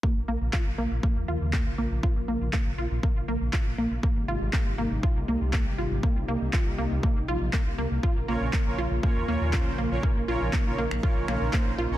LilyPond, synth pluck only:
\new Staff \with { instrumentName = "Synth pluck" } { \time 4/4 \key bes \dorian \tempo 4 = 120 bes8 bes8 f'8 bes8 bes8 f'8 bes8 bes8 | f'8 bes8 bes8 f'8 bes8 bes8 f'8 bes8 | bes8 f'8 bes8 bes8 f'8 bes8 bes8 f'8 | bes8 bes8 f'8 bes8 bes8 f'8 bes8 bes8 |
f'8 bes8 bes8 f'8 bes8 bes8 f'8 bes8 | bes8 f'8 bes8 bes8 f'8 bes8 bes8 f'8 | }